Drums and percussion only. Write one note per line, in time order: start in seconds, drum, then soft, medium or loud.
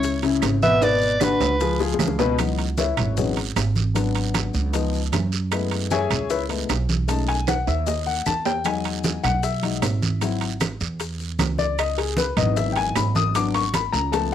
0.03 high bongo medium
0.03 high conga soft
0.03 long guiro medium
0.03 maracas medium
0.23 high bongo soft
0.23 high conga soft
0.23 high timbale medium
0.23 maracas soft
0.42 high bongo medium
0.42 low bongo medium
0.42 high conga soft
0.42 high timbale loud
0.42 low timbale medium
0.42 short guiro medium
0.42 claves medium
0.42 maracas medium
0.62 high conga medium
0.62 short guiro medium
0.62 maracas soft
0.82 high bongo medium
0.82 high timbale loud
0.82 long guiro medium
0.82 maracas medium
1.01 high bongo soft
1.01 high conga soft
1.01 maracas soft
1.20 high bongo medium
1.20 high conga medium
1.20 low timbale medium
1.20 short guiro medium
1.20 claves medium
1.20 maracas medium
1.41 high bongo soft
1.41 low timbale medium
1.41 short guiro medium
1.41 maracas soft
1.60 high bongo medium
1.60 high conga soft
1.60 long guiro medium
1.60 maracas medium
1.80 high bongo medium
1.80 high conga soft
1.80 maracas soft
1.94 high bongo medium
1.99 high conga medium
1.99 low timbale medium
1.99 short guiro medium
1.99 claves medium
1.99 maracas medium
2.08 low bongo medium
2.19 low bongo medium
2.19 low timbale medium
2.19 short guiro medium
2.19 maracas soft
2.38 high bongo medium
2.38 high timbale medium
2.38 long guiro medium
2.38 claves medium
2.38 maracas medium
2.58 high bongo soft
2.58 high conga soft
2.58 high timbale medium
2.58 maracas soft
2.78 high bongo medium
2.78 high conga medium
2.78 low timbale medium
2.78 short guiro medium
2.78 maracas medium
2.97 high bongo soft
2.97 high conga soft
2.97 low conga medium
2.97 high timbale loud
2.97 short guiro medium
2.97 claves medium
2.97 maracas soft
3.17 high bongo medium
3.17 high conga soft
3.17 low conga medium
3.17 long guiro medium
3.17 maracas medium
3.37 high bongo soft
3.37 high conga soft
3.37 high timbale medium
3.37 maracas soft
3.56 high bongo medium
3.56 low bongo medium
3.56 high conga soft
3.56 high timbale medium
3.56 low timbale medium
3.56 short guiro medium
3.56 claves medium
3.56 maracas medium
3.76 high conga medium
3.76 short guiro medium
3.76 maracas soft
3.95 high bongo medium
3.95 high conga soft
3.95 high timbale medium
3.95 long guiro medium
3.95 maracas medium
4.15 high bongo soft
4.15 high conga soft
4.15 high timbale medium
4.15 maracas soft
4.34 high bongo medium
4.34 high conga medium
4.34 high timbale loud
4.34 low timbale medium
4.34 short guiro medium
4.34 claves medium
4.34 maracas medium
4.54 high bongo soft
4.54 short guiro medium
4.54 maracas soft
4.73 high bongo medium
4.73 high conga soft
4.73 high timbale medium
4.73 long guiro medium
4.73 maracas medium
4.93 high conga soft
4.93 maracas soft
5.12 high bongo medium
5.12 low bongo medium
5.12 high conga medium
5.12 high timbale medium
5.12 low timbale medium
5.12 short guiro medium
5.12 claves medium
5.12 maracas medium
5.32 high bongo soft
5.32 short guiro medium
5.32 maracas soft
5.52 high bongo medium
5.52 high conga soft
5.52 high timbale loud
5.52 long guiro medium
5.52 claves medium
5.52 maracas medium
5.71 high bongo soft
5.71 high conga soft
5.71 high timbale medium
5.71 maracas soft
5.91 high bongo medium
5.91 high conga medium
5.91 low timbale medium
5.91 short guiro medium
5.91 maracas medium
6.11 high bongo soft
6.11 high conga soft
6.11 low conga medium
6.11 high timbale loud
6.11 short guiro medium
6.11 claves medium
6.11 maracas soft
6.30 high bongo medium
6.30 high conga soft
6.30 long guiro medium
6.30 maracas medium
6.50 high bongo soft
6.50 high conga soft
6.50 high timbale medium
6.50 maracas soft
6.69 high bongo medium
6.69 low bongo medium
6.69 high conga soft
6.69 high timbale medium
6.69 low timbale medium
6.69 short guiro medium
6.69 claves medium
6.69 maracas medium
6.89 high conga medium
6.89 short guiro medium
6.89 maracas soft
7.08 high bongo medium
7.08 high conga soft
7.08 high timbale medium
7.08 long guiro medium
7.08 maracas medium
7.29 high bongo soft
7.29 high conga soft
7.29 high timbale medium
7.29 maracas soft
7.47 high bongo medium
7.47 high conga medium
7.47 high timbale loud
7.47 short guiro medium
7.47 claves medium
7.47 maracas medium
7.67 high bongo soft
7.67 high timbale medium
7.67 short guiro medium
7.67 maracas soft
7.87 high bongo medium
7.87 high conga soft
7.87 low timbale medium
7.87 long guiro medium
7.87 maracas medium
8.07 high conga soft
8.07 maracas soft
8.26 high bongo medium
8.26 low bongo medium
8.26 high conga medium
8.26 short guiro medium
8.26 claves medium
8.26 maracas medium
8.45 high bongo soft
8.45 low timbale loud
8.45 short guiro medium
8.45 maracas soft
8.65 high bongo medium
8.65 high conga soft
8.65 high timbale medium
8.65 long guiro medium
8.65 claves medium
8.65 maracas medium
8.84 high bongo soft
8.84 high conga soft
8.84 high timbale medium
8.84 maracas soft
9.04 high bongo medium
9.04 high conga loud
9.04 low timbale medium
9.04 short guiro medium
9.04 maracas medium
9.23 high bongo soft
9.23 high conga soft
9.23 low conga medium
9.23 high timbale medium
9.23 short guiro medium
9.23 claves medium
9.23 maracas soft
9.43 high bongo medium
9.43 high conga soft
9.43 long guiro medium
9.43 maracas medium
9.63 high bongo soft
9.63 high conga soft
9.63 high timbale medium
9.63 maracas soft
9.82 high bongo medium
9.82 low bongo medium
9.82 high conga soft
9.82 high timbale medium
9.82 low timbale medium
9.82 short guiro medium
9.82 claves medium
9.82 maracas medium
10.02 high conga medium
10.02 short guiro medium
10.02 maracas soft
10.21 high bongo medium
10.21 high timbale medium
10.21 long guiro medium
10.21 maracas medium
10.41 high bongo soft
10.41 high conga soft
10.41 high timbale medium
10.41 maracas soft
10.60 high bongo medium
10.60 high conga medium
10.60 high timbale medium
10.60 low timbale medium
10.60 short guiro medium
10.60 claves medium
10.60 maracas medium
10.80 high bongo soft
10.80 short guiro medium
10.80 maracas soft
11.00 high bongo medium
11.00 high conga soft
11.00 high timbale medium
11.00 long guiro medium
11.00 maracas medium
11.19 high conga soft
11.19 maracas soft
11.39 high bongo medium
11.39 low bongo medium
11.39 high conga medium
11.39 high timbale medium
11.39 low timbale medium
11.39 short guiro medium
11.39 claves medium
11.39 maracas medium
11.58 high bongo soft
11.58 high conga medium
11.58 short guiro medium
11.58 maracas soft
11.79 high bongo medium
11.79 high timbale loud
11.79 long guiro medium
11.79 claves medium
11.79 maracas medium
11.97 high bongo soft
11.97 high conga soft
11.97 high timbale medium
11.97 maracas soft
12.17 high bongo medium
12.17 high conga loud
12.17 low timbale medium
12.17 short guiro medium
12.17 maracas medium
12.37 high bongo soft
12.37 high conga soft
12.37 low conga medium
12.37 high timbale medium
12.37 short guiro medium
12.37 claves medium
12.37 maracas soft
12.57 high bongo medium
12.57 high conga soft
12.57 long guiro medium
12.57 maracas medium
12.76 high bongo soft
12.76 high conga soft
12.76 high timbale medium
12.76 maracas soft
12.96 high bongo medium
12.96 low bongo medium
12.96 high conga soft
12.96 high timbale medium
12.96 low timbale medium
12.96 short guiro medium
12.96 claves medium
12.96 maracas medium
13.15 high conga medium
13.15 short guiro medium
13.15 maracas soft
13.35 high bongo medium
13.35 high timbale medium
13.35 long guiro medium
13.35 maracas medium
13.54 high bongo soft
13.54 high conga soft
13.54 high timbale medium
13.54 maracas soft
13.74 high bongo medium
13.74 high conga medium
13.74 high timbale loud
13.74 low timbale medium
13.74 short guiro medium
13.74 claves medium
13.74 maracas medium
13.94 high bongo soft
13.94 short guiro medium
13.94 maracas soft
14.13 high bongo loud
14.13 high conga soft
14.13 high timbale medium
14.13 long guiro medium
14.13 maracas medium